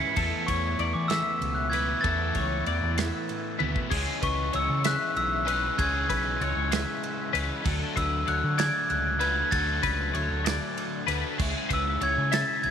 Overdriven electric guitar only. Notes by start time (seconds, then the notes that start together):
Already playing: C#3 G#3 C#4 E4
0.15 E3 A3 B3 E4
1.72 E3 A3 B3 E4
2.02 E3 A3 B3
2.06 E4
3.59 E3 A3 B3 E4
3.90 C#3 E3 G#3 C#4
5.45 C#3 E3 G#3 C#4
5.78 C#3 E3 G#3 C#4
7.33 C#3 E3 G#3 C#4
7.64 D3 F#3 A3 D4
9.19 F#3 A3 D4
9.24 D3
9.51 D3 F#3 A3 D4
11.07 D3 F#3 A3 D4
11.38 C#3 G#3 C#4 E4